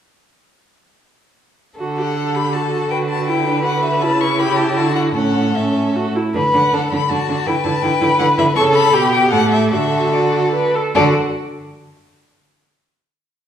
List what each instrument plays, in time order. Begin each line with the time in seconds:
1.79 cello D3, viola F#4, violin A4
1.98 viola G4, violin F#5
2.18 viola A4
2.35 viola G4, violin B5
2.53 viola F#4, violin A4 A5
2.73 viola F#4
2.90 cello D3, violin B4 G5
3.09 violin A5
3.27 viola E4, violin G5
3.47 viola D4
3.65 viola F#4, violin F#5
3.84 violin E5
4.01 cello C#3, viola E4, violin A5
4.21 violin C#6
4.39 violin G4 B5
4.56 violin A5
4.75 cello D3, violin F#4 A5
4.95 violin F#5
5.14 cello A2, viola C#4, violin A4 F#5
5.55 viola C#4, violin E5
5.96 viola F#4
6.15 viola E4
6.35 cello D3, viola D4, violin B4
6.53 cello D3, viola D4, violin F#5
6.73 cello D3, viola D4, violin A4
6.91 cello D3, viola D4, violin B5
7.09 cello D3, viola D4, violin F#4 A5
7.28 cello D3, viola D4
7.46 cello D3, viola E4, violin B4 G5
7.64 cello D3, viola E4, violin A5
7.82 cello D3, viola E4, violin G5
8.00 cello D3, viola E4
8.19 cello D3, viola E4, violin F#5
8.37 cello D3, viola E4, violin E5
8.56 cello C#3, viola A4, violin A4 C#6
8.74 violin B5
8.93 cello B2, viola G4, violin G4
9.12 violin G5
9.31 cello A2, viola G4, violin A4 F#5
9.51 violin E5
9.71 cello D3, viola F#4, violin A4 E5
10.13 viola F#4, violin D5
10.54 viola B4
10.75 viola A4
10.95 cello D3, viola F#4, violin A4 D5